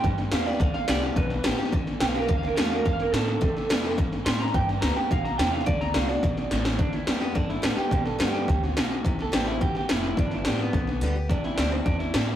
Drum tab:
HH |----p-------p---|----p-------p---|----p-------p---|----p-------p---|
SD |o-o-o-ooo-o-o-o-|o-o-o-ooo-o-o-oo|o-o-o-o-o-o-o-o-|o-o-o-ooo-o-o-oo|
BD |o-------o-------|o-------o-------|o-------o-------|o-------o-------|

HH |----p-------p---|----p-------p---|----p-------p---|----p-------p---|
SD |o-o-o-o-o-o-o-oo|o-o-o-o-o-o-o-o-|o-o-o-o-o-o-o-o-|o-o-o-o-o-o-o-o-|
BD |o-------o-------|o-------o-------|o-------o-------|o-------o-------|

HH |----p-------p---|----p-------p---|----p-------p---|
SD |o-o-o-o-o-o-o-o-|o-o-o-o-o-o-----|o-o-o-o-o-o-o-o-|
BD |o-------o-------|o-------o-------|o-------o-------|